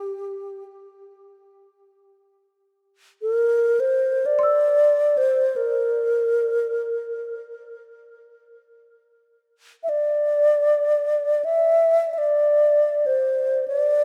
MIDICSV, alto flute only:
0, 0, Header, 1, 2, 480
1, 0, Start_track
1, 0, Tempo, 500000
1, 13481, End_track
2, 0, Start_track
2, 0, Title_t, "Alto flute"
2, 0, Program_c, 0, 73
2, 0, Note_on_c, 0, 67, 60
2, 610, Note_off_c, 0, 67, 0
2, 3090, Note_on_c, 0, 70, 64
2, 3647, Note_on_c, 0, 72, 67
2, 3662, Note_off_c, 0, 70, 0
2, 4089, Note_on_c, 0, 74, 78
2, 4103, Note_off_c, 0, 72, 0
2, 4967, Note_on_c, 0, 72, 64
2, 4981, Note_off_c, 0, 74, 0
2, 5340, Note_on_c, 0, 70, 61
2, 5354, Note_off_c, 0, 72, 0
2, 7085, Note_off_c, 0, 70, 0
2, 9440, Note_on_c, 0, 76, 50
2, 9495, Note_on_c, 0, 74, 70
2, 9509, Note_off_c, 0, 76, 0
2, 10988, Note_on_c, 0, 76, 80
2, 11002, Note_off_c, 0, 74, 0
2, 11648, Note_off_c, 0, 76, 0
2, 11648, Note_on_c, 0, 76, 50
2, 11694, Note_on_c, 0, 74, 74
2, 11708, Note_off_c, 0, 76, 0
2, 12539, Note_on_c, 0, 72, 62
2, 12553, Note_off_c, 0, 74, 0
2, 13126, Note_off_c, 0, 72, 0
2, 13132, Note_on_c, 0, 74, 67
2, 13481, Note_off_c, 0, 74, 0
2, 13481, End_track
0, 0, End_of_file